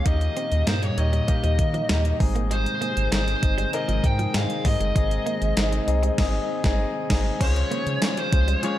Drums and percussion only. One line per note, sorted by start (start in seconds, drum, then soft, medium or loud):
0.06 kick loud
0.06 closed hi-hat medium
0.21 closed hi-hat soft
0.37 closed hi-hat medium
0.52 closed hi-hat medium
0.67 snare loud
0.67 closed hi-hat medium
0.83 closed hi-hat medium
0.98 closed hi-hat medium
1.13 closed hi-hat soft
1.28 kick medium
1.28 closed hi-hat medium
1.44 closed hi-hat medium
1.59 kick medium
1.59 closed hi-hat medium
1.74 closed hi-hat soft
1.89 snare loud
1.89 closed hi-hat medium
2.05 closed hi-hat soft
2.20 kick loud
2.20 open hi-hat medium
2.36 closed hi-hat medium
2.51 closed hi-hat medium
2.66 closed hi-hat soft
2.82 closed hi-hat medium
2.97 closed hi-hat medium
3.12 snare loud
3.12 closed hi-hat loud
3.28 closed hi-hat medium
3.43 kick medium
3.43 closed hi-hat medium
3.58 closed hi-hat medium
3.73 closed hi-hat medium
3.89 closed hi-hat medium
4.04 kick medium
4.04 closed hi-hat medium
4.19 closed hi-hat soft
4.34 snare loud
4.34 closed hi-hat medium
4.50 closed hi-hat soft
4.65 kick medium
4.65 open hi-hat medium
4.81 closed hi-hat medium
4.96 kick loud
4.96 closed hi-hat medium
5.11 closed hi-hat medium
5.27 closed hi-hat medium
5.42 closed hi-hat medium
5.57 snare loud
5.57 closed hi-hat loud
5.73 closed hi-hat medium
5.88 closed hi-hat medium
6.03 closed hi-hat soft
6.18 kick loud
6.18 snare loud
6.18 crash medium
6.64 kick loud
6.64 snare loud
7.10 kick loud
7.10 snare loud
7.10 crash medium
7.41 kick loud
7.41 closed hi-hat medium
7.41 crash loud
7.56 closed hi-hat medium
7.71 closed hi-hat medium
7.87 closed hi-hat medium
8.02 snare loud
8.02 closed hi-hat loud
8.02 tambourine medium
8.17 closed hi-hat medium
8.33 kick loud
8.33 closed hi-hat medium
8.48 closed hi-hat medium
8.63 closed hi-hat medium